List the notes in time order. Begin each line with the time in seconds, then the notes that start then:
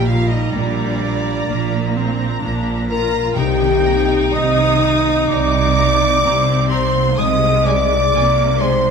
Already playing: A#1 A#2 G3 G4 A#4
0.06 A#3 F4 F5 A#5
0.28 D4 D#5
0.32 D#4
0.50 A#1 A#2 D5
0.55 D4
0.78 A#4
1.01 D4 A#5
1.25 A#3
1.48 A#1 A#2 A#3
1.96 A#3 C4 A#5
2.19 D4
2.42 A#1 A#2 D4
2.66 A#4
2.88 D4 F4 A#4 A#5
3.13 A#3
3.34 C2 C3 D#4 G4 G5 A#5
3.61 D#3
3.85 A#3 A#5
4.10 D#4
4.33 C2 C3 D#5 A#5 D#6
4.59 A#4
4.82 D#4 A#5
5.06 A#3
5.28 C2 C3 D5 A#5 D6
5.76 A#3 A#5
6.00 D#4
6.23 C2 C3 C4 A#5
6.47 A#4
6.69 D#4 C5 A#5 C6
6.94 A#3
7.18 C2 C3 G#3 D#5 G#5 D#6
7.42 C4
7.65 G#3 D5 G#5 D6
7.90 D#4
8.13 C2 C3 A#3 G#4 G#5
8.37 D#4
8.60 G#3 C5 G#5 C6
8.85 C4